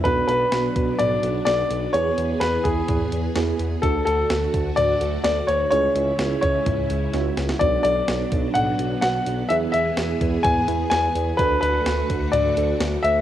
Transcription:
<<
  \new Staff \with { instrumentName = "Grand piano" } { \time 4/4 \key e \mixolydian \tempo 4 = 127 b'8 b'4. d''4 d''4 | cis''4 b'8 gis'4. r4 | a'8 a'4. d''4 d''8 cis''8 | cis''4. cis''2 r8 |
d''8 d''4. fis''4 fis''4 | e''8 e''4. gis''4 gis''4 | b'8 b'4. d''4. e''8 | }
  \new Staff \with { instrumentName = "FM electric piano" } { \time 4/4 \key e \mixolydian <b d' fis'>1 | <b e' gis'>2. <b e' gis'>4 | <d' fis' a'>1 | <cis' e' gis'>2. <cis' e' fis'>4 |
<b d' fis'>1 | <b e' gis'>2~ <b e' gis'>8 <b e' b'>4. | <d' fis' a'>2~ <d' fis' a'>8 <d' fis' a'>4. | }
  \new Staff \with { instrumentName = "String machine" } { \time 4/4 \key e \mixolydian << { <fis d'>1 | <e gis'>1 | <d fis'>1 | <cis e'>1 |
<fis d'>1 | <e gis'>1 | <d fis'>1 | } \\ { b1~ | b1 | a1 | gis1 |
b1~ | b1 | a1 | } >> }
  \new Staff \with { instrumentName = "Analog synth bass" } { \clef bass \time 4/4 \key e \mixolydian b,,8 b,,8 b,,8 b,,8 b,,8 b,,8 b,,8 b,,8 | e,8 e,8 e,8 e,8 e,8 e,8 e,8 e,8 | d,8 d,8 d,8 d,8 d,8 d,8 d,8 d,8 | cis,8 cis,8 cis,8 cis,8 cis,8 cis,8 cis,8 cis,8 |
b,,8 b,,8 b,,8 b,,8 b,,8 b,,8 b,,8 b,,8 | e,8 e,8 e,8 e,8 e,8 e,8 e,8 e,8 | d,8 d,8 d,8 d,8 d,8 d,8 d,8 d,8 | }
  \new DrumStaff \with { instrumentName = "Drums" } \drummode { \time 4/4 <hh bd>8 hh8 <hh sn>8 <hh bd>8 <hh toml>8 hh8 <hh sn>8 hh8 | hh8 hh8 <hh sn>8 <hh bd>8 <hh bd toml>8 hh8 <hh sn>8 hh8 | <hh bd>8 hh8 <hh sn>8 <hh bd>8 <hh toml>8 hh8 <hh sn>8 hh8 | hh8 hh8 <hh sn>8 <hh bd>8 <hh bd toml>8 hh8 <hh sn>8 <hh sn>16 sn16 |
<hh bd>8 hh8 <hh sn>8 <hh bd>8 <hh toml>8 hh8 <hh sn>8 hh8 | hh8 hh8 <hh sn>8 <hh bd>8 <hh bd toml>8 hh8 <hh sn>8 hh8 | <hh bd>8 hh8 <hh sn>8 <hh bd>8 <hh toml>8 hh8 <hh sn>8 hh8 | }
>>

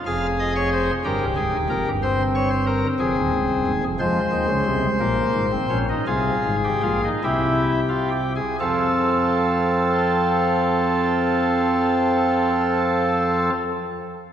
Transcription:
<<
  \new Staff \with { instrumentName = "Pipe organ" } { \time 6/8 \key c \phrygian \tempo 4. = 54 << { f''8 ees''16 des''16 c''8 bes'8 aes'8 bes'8 | c''8 des''16 c''16 bes'8 aes'4. | c''2. | aes'4. g'4. |
<c' a'>2.~ | <c' a'>2. | } \\ { aes'4. g'4. | c'2. | aes4. bes8. c'16 des'16 ees'16 | f'8. g'16 f'16 ees'16 e'8. f'16 g'16 aes'16 |
f'2.~ | f'2. | } >> }
  \new Staff \with { instrumentName = "Pipe organ" } { \clef bass \time 6/8 \key c \phrygian <f,, f,>4. <g,, g,>16 <c,, c,>16 <des,, des,>16 <ees,, ees,>16 <f,, f,>16 <g,, g,>16~ | <g,, g,>4. <f,, f,>16 <ees,, ees,>16 <des,, des,>16 <c,, c,>16 <ees,, ees,>16 <f,, f,>16 | <f, f>8 <ees, ees>16 <des, des>16 <c, c>8 <bes,, bes,>8 <aes,, aes,>8 <bes,, bes,>8 | <c, c>8 <aes,, aes,>8 <bes,, bes,>8 <c, c>4. |
<f, f>2.~ | <f, f>2. | }
>>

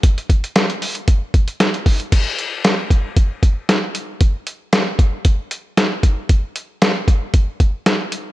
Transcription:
\new DrumStaff \with { instrumentName = "Drums" } \drummode { \time 4/4 \tempo 4 = 115 <hh bd>16 hh16 <hh bd>16 hh16 <hh sn>16 hh16 hho16 hh16 <hh bd>8 <hh bd>16 hh16 <hh sn>16 hh16 <hho bd>16 hh16 | <cymc hh bd>8 hh8 <hh sn>8 <hh bd>8 <hh bd>8 <hh bd>8 <hh sn>8 hh8 | <hh bd>8 hh8 <hh sn>8 <hh bd>8 <hh bd>8 hh8 <hh sn>8 <hh bd>8 | <hh bd>8 hh8 <hh sn>8 <hh bd>8 <hh bd>8 <hh bd>8 <hh sn>8 hh8 | }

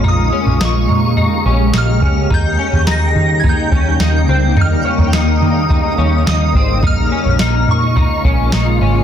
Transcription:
<<
  \new Staff \with { instrumentName = "Synth bell" } { \time 4/4 \key ees \mixolydian \tempo 4 = 106 ees'''4 des'''2 f'''4 | g'''4 bes'''8.~ bes'''32 aes'''32 g'''2 | f'''4 ees'''2 ees'''4 | f'''4. des'''2~ des'''8 | }
  \new Staff \with { instrumentName = "Synth texture" } { \time 4/4 \key ees \mixolydian r1 | r8 g''2~ g''8 g''4~ | g''4 ees''2. | r2 r8 f''4. | }
  \new Staff \with { instrumentName = "Clean electric guitar" } { \time 4/4 \key ees \mixolydian ees'8 des'8 ees'4 ees'8 des'8 ees'8 des'8 | ees'8 des'8 ees'4 ees'8 des'8 ees'8 c'8 | ees'8 des'8 ees'4 ees'8 des'8 ees'8 c'8 | ees'8 des'8 ees'4 ees'8 des'8 ees'8 des'8 | }
  \new Staff \with { instrumentName = "Ambient pad" } { \time 4/4 \key ees \mixolydian << { <aes bes g'>1 | <g bes ees'>1~ | <g bes ees'>1 | <aes bes f'>1 | } \\ { des1~ | des1~ | des1 | des1 | } >> }
  \new Staff \with { instrumentName = "Picked electric bass" } { \clef bass \time 4/4 \key ees \mixolydian bes,,8 r16 bes,,16 bes,,8 bes,8. r16 bes,,8 bes,,8 des,8 | ees,8 r16 ees,16 ees,8 ees8. r16 ees,8 ees,8 des,8 | ees,8 r16 ees,16 ees,8 ees8. r16 ees,8 ees,8 aes,,8 | bes,,8 r16 bes,,16 bes,,8 bes,8. r16 bes,,8 bes,,8 aes,,8 | }
  \new DrumStaff \with { instrumentName = "Drums" } \drummode { \time 4/4 tomfh8. tomfh16 sn8 tomfh8 tomfh4 sn8 <bd tomfh>8 | <bd tomfh>8. tomfh16 sn8 tomfh8 <bd tomfh>8 bd8 sn4 | tomfh8. tomfh16 sn8 tomfh8 <bd tomfh>4 sn8 bd8 | <bd tomfh>8. tomfh16 sn8 tomfh8 <bd tomfh>8 bd8 sn4 | }
>>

